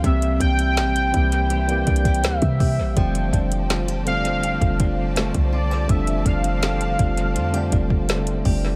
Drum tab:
HH |x-x-x-x-x-x-x-x-x-x-xxxxx-x-o---|x-x-x-x-x-x-x-x-x-x-x---x-x-----|x-x-x-x-x-x-x-x-x-x-x---x-x-o---|
SD |--------o---------------o-------|--------o---------------o-------|--------o---------------o-------|
BD |o---o-------o-------o-o---o-o---|o---o-------------o-o-----o-----|o---o-------o-------o-o-----o---|